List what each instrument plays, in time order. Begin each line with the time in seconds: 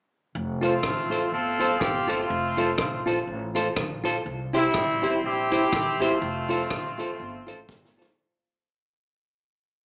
0.35 upright bass F1
0.61 horn section A3 C4 F4, clean electric guitar F4 A4 C5, upright piano F4 A4 C5, closed hi-hat
0.83 upright bass A1, kick, cross-stick
1.10 upright piano F4 A4 C5, clean electric guitar F4 A4 C5, closed hi-hat
1.32 upright bass G1, horn section C4 F4 A4
1.59 upright piano F4 A4 C5, clean electric guitar F4 A4 C5, closed hi-hat
1.80 upright bass G1, horn section G4, upright piano A4 C5, kick, cross-stick
2.07 horn section A3 C4 F4, clean electric guitar F4 A4 C5, upright piano F4 A4 C5, closed hi-hat
2.30 upright bass F1
2.57 upright piano F4 A4 C5, clean electric guitar F4 A4 C5, closed hi-hat
2.78 kick, cross-stick
3.05 upright bass A#1, upright piano F4 A4 C5, clean electric guitar F4 A4 C5, closed hi-hat
3.27 upright bass A1
3.54 upright piano F4 A4 C5, clean electric guitar F4 A4 C5, closed hi-hat
3.76 upright bass A#1, upright piano A4 C5, kick, cross-stick
4.04 clean electric guitar F4 A4 C5, upright piano F4 A4 C5, closed hi-hat
4.26 upright bass C2
4.53 horn section G3 C4 E4, clean electric guitar E4 G4 C5, upright piano E4 G4 C5, closed hi-hat
4.74 upright bass A1, kick, cross-stick
5.02 upright piano E4 G4 C5, clean electric guitar E4 G4 C5, closed hi-hat
5.24 upright bass A#1, horn section C4 E4 G4
5.51 upright piano E4 G4 C5, clean electric guitar E4 G4 C5, closed hi-hat
5.72 upright bass A1, upright piano G4 C5, kick, cross-stick
6.00 horn section A3 C4 F4, upright piano E4 G4 C5, clean electric guitar E4 G4 C5, closed hi-hat
6.22 upright bass F1
6.49 upright piano F4 A4 C5, clean electric guitar F4 A4 C5, closed hi-hat
6.70 upright bass A1, kick, cross-stick
6.98 clean electric guitar F4 A4 C5, upright piano F4 A4 C5, closed hi-hat
7.20 upright bass G1
7.47 upright bass A1, clean electric guitar F4 A4 C5, upright piano F4 A4 C5, closed hi-hat
7.69 upright bass G1, kick, snare
7.85 snare
7.97 upright piano F4 A4 C5, clean electric guitar F4 A4 C5
8.02 snare